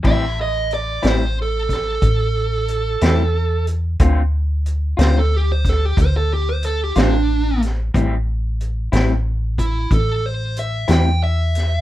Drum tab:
CC |x-----------|------------|------------|
HH |--xx-xx-xx-x|x-xx-xx-xx-x|x-xx-xx-xx-x|
SD |---o-o---o--|---o-o---o-o|---o-----o-o|
BD |o----oo-----|o----oo-----|o----oo-----|